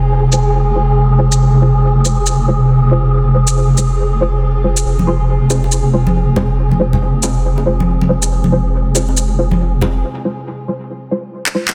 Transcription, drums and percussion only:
0.32 shaker soft
1.32 shaker medium
2.05 shaker soft
2.26 shaker soft
3.48 shaker medium
3.78 shaker soft
4.77 shaker medium
4.99 high conga medium
5.50 high bongo medium
5.50 shaker soft
5.64 high bongo soft
5.72 shaker medium
6.07 high conga medium
6.36 high bongo medium
6.36 low conga medium
6.71 high conga medium
6.93 low conga medium
7.23 high bongo medium
7.23 shaker soft
7.58 high bongo soft
7.80 high conga medium
8.01 high conga medium
8.22 high bongo soft
8.22 shaker medium
8.44 high conga medium
8.95 high bongo medium
8.95 shaker soft
9.09 high bongo soft
9.17 shaker soft
9.51 high conga medium
9.81 high bongo medium
9.81 low conga medium
11.46 clap medium
11.68 clap medium

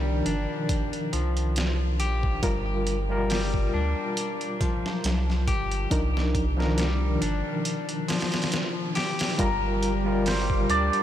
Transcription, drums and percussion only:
0.26 closed hi-hat medium
0.69 kick loud
0.69 closed hi-hat medium
0.93 closed hi-hat soft
1.13 closed hi-hat medium
1.37 closed hi-hat soft
1.56 snare loud
1.56 closed hi-hat medium
2.00 closed hi-hat medium
2.23 kick medium
2.43 kick loud
2.43 closed hi-hat medium
2.87 closed hi-hat medium
3.30 snare loud
3.30 open hi-hat medium
3.54 kick medium
4.17 closed hi-hat medium
4.41 closed hi-hat soft
4.61 kick loud
4.61 closed hi-hat medium
4.86 snare medium
5.04 snare loud
5.04 closed hi-hat medium
5.30 snare soft
5.48 kick medium
5.48 closed hi-hat medium
5.71 closed hi-hat soft
5.91 kick loud
5.91 closed hi-hat medium
6.17 snare medium
6.35 kick medium
6.35 closed hi-hat medium
6.60 snare soft
6.78 snare loud
6.78 closed hi-hat medium
7.22 closed hi-hat medium
7.65 closed hi-hat medium
7.89 closed hi-hat soft
8.08 snare medium
8.08 open hi-hat medium
8.21 snare medium
8.21 open hi-hat medium
8.32 snare medium
8.32 open hi-hat medium
8.42 snare medium
8.42 open hi-hat medium
8.52 snare loud
8.52 closed hi-hat medium
8.95 snare medium
8.95 open hi-hat medium
9.19 snare loud
9.19 open hi-hat medium
9.39 kick loud
9.39 closed hi-hat medium
9.83 closed hi-hat medium
10.26 snare loud
10.26 open hi-hat medium
10.50 kick medium
10.70 closed hi-hat medium
10.93 closed hi-hat soft

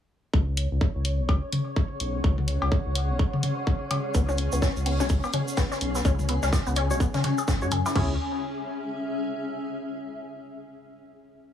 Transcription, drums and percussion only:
0.34 kick loud
0.57 closed hi-hat medium
0.81 kick loud
1.05 closed hi-hat medium
1.29 kick loud
1.29 cowbell medium
1.52 closed hi-hat medium
1.52 high tom medium
1.76 kick loud
2.00 closed hi-hat medium
2.24 kick loud
2.38 high tom medium
2.48 closed hi-hat medium
2.62 cowbell medium
2.72 kick loud
2.95 closed hi-hat medium
3.19 kick loud
3.33 high tom medium
3.43 closed hi-hat medium
3.43 high tom medium
3.67 kick loud
3.91 closed hi-hat medium
3.91 high tom medium
3.91 cowbell medium
4.14 kick loud
4.14 shaker medium
4.29 shaker soft
4.38 closed hi-hat medium
4.38 shaker medium
4.52 shaker medium
4.62 kick loud
4.62 snare loud
4.62 shaker medium
4.76 closed hi-hat soft
4.76 shaker soft
4.86 closed hi-hat medium
4.86 open hi-hat medium
5.00 snare soft
5.00 shaker medium
5.09 kick loud
5.09 shaker medium
5.24 cowbell medium
5.24 shaker soft
5.33 closed hi-hat loud
5.33 high tom medium
5.33 shaker medium
5.48 shaker medium
5.57 kick loud
5.57 snare loud
5.57 shaker medium
5.72 snare soft
5.72 shaker soft
5.81 closed hi-hat medium
5.81 shaker medium
5.95 snare medium
5.95 shaker medium
6.05 kick loud
6.05 shaker medium
6.19 high tom medium
6.19 shaker soft
6.29 closed hi-hat loud
6.29 shaker medium
6.43 snare medium
6.43 shaker medium
6.53 kick loud
6.53 snare loud
6.53 cowbell medium
6.53 shaker medium
6.66 closed hi-hat soft
6.66 shaker soft
6.76 closed hi-hat medium
6.76 shaker medium
6.91 shaker medium
7.00 kick loud
7.00 shaker medium
7.14 snare soft
7.14 closed hi-hat soft
7.14 high tom medium
7.14 shaker soft
7.24 snare soft
7.24 closed hi-hat loud
7.24 high tom medium
7.24 shaker medium
7.38 shaker medium
7.48 kick loud
7.48 snare loud
7.48 shaker medium
7.49 shaker medium
7.62 shaker soft
7.71 closed hi-hat loud
7.71 high tom medium
7.71 shaker medium
7.86 snare medium
7.86 cowbell medium
7.86 shaker medium
7.96 kick loud
7.96 floor tom loud
7.96 crash medium

